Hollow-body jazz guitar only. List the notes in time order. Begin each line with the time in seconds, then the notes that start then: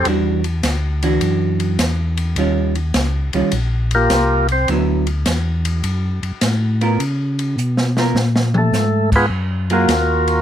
0.06 E3 G3 D4 F#4
1.03 E3 D4 F#4
2.38 D#3 G3 C#4 F4
3.34 D#3 G3 C#4 F4
4.69 D3 F#3 B3 E4
6.81 B3 F4 A#4
7.97 B3 F4 A#4
9.70 F#3 A#3 F4 G#4